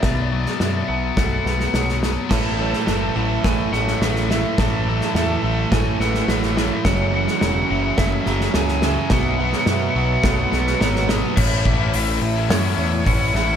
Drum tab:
CC |----------------|x---------------|----------------|----------------|
HH |----------------|----------------|----------------|----------------|
SD |o--oo---o-ooooo-|o--oo---o-ooooo-|o--oo---o-ooooo-|o--oo---o-ooooo-|
BD |o-------o-------|o-------o-------|o-------o-------|o-------o-------|

CC |----------------|x---------------|
HH |----------------|----o---o---o---|
SD |o--oo---o-ooooo-|--------o-----o-|
BD |o-------o-------|o-o---------o---|